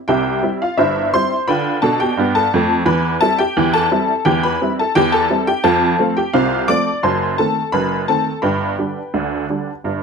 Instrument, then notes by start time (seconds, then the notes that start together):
honky-tonk piano
0.08 C2 C3 G4 E5 G5
0.42 G3 C4 E4
0.62 F4 F5
0.78 G1 G2 E4 C5 E5
1.14 G3 C4 E4 C5 C6
1.48 D3 F4 B4 G5 B5
1.82 B2 D4 A4 A5
2.00 G4 G5
2.17 G2 B3
2.35 A4 A5
2.54 F2 A3
2.86 E2 E3 B4 B5
3.21 G3 C4 E4 A4 A5
3.39 G4 G5
3.57 E2 E3
3.73 A4 A5
3.91 G3 C4 E4
4.25 E2 E3 G4 G5
4.43 B4 B5
4.62 G3 C4 E4
4.79 A4 A5
4.95 E2 E3 G4 G5
5.12 A4 A5
5.30 G3 C4 E4
5.47 G4 G5
5.64 F2 F3 A4 F5 A5
5.99 F3 A3 C4
6.17 G4 G5
6.33 C2 C3 F4 C5 F5
6.68 F3 A3 C4 D5 D6
7.03 F#1 F#2 C5 A5 C6
7.38 D#3 A3 C4 A4 A5
7.72 F#1 F#2 B4 B5
8.08 D#3 A3 C4 A4 A5
8.42 G1 G2 B4 G5 B5
8.78 D3 G3 D4
9.14 D2 D3
9.49 D3 G3 D4
9.84 G1 G2